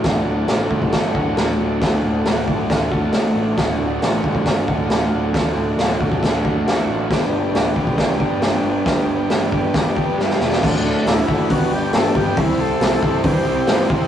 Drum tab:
CC |----------------|----------------|----------------|----------------|
HH |o---o---o---o---|o---o---o---o---|o---o---o---o---|o---o---o---o---|
SD |o---o---o---o---|o---o---o---o---|o---o---o---o---|o---o---o---o---|
BD |o-----ooo-o-----|o-----o-o-o-----|o-----ooo-o-----|o-----ooo-o-----|

CC |----------------|----------------|x---------------|----------------|
HH |o---o---o---o---|o---o---o-------|----o---o---o---|o---o---o---o---|
SD |o---o---o---o---|o---o---o---oooo|----o-------o---|----o-------o---|
BD |o-----ooo-o-----|o-----o-o-o-----|o-----o-o-----o-|o-----o-o-----o-|